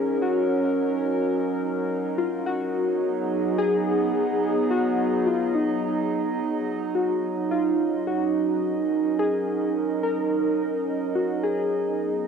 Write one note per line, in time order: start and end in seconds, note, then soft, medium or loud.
0.00 12.27 F#3 medium
0.00 4.02 C#4 medium
0.00 12.27 D#4 medium
0.00 0.24 G#4 medium
0.00 3.78 A#4 medium
0.00 12.27 D#5 medium
0.22 1.87 F#4 medium
2.18 2.48 F4 loud
2.46 3.62 F#4 loud
2.87 6.96 B3 medium
2.87 8.67 G#4 medium
3.58 4.67 G#4 loud
4.71 5.29 F#4 loud
5.27 5.53 F4 loud
5.55 6.64 D#4 medium
6.95 7.53 F#4 medium
7.47 12.27 C#4 medium
7.47 8.04 F4 medium
8.07 9.16 F#4 medium
8.43 12.27 A#4 medium
9.19 9.72 G#4 loud
10.03 11.19 A#4 medium
11.15 11.45 F#4 medium
11.43 12.27 G#4 medium
11.75 12.27 B3 medium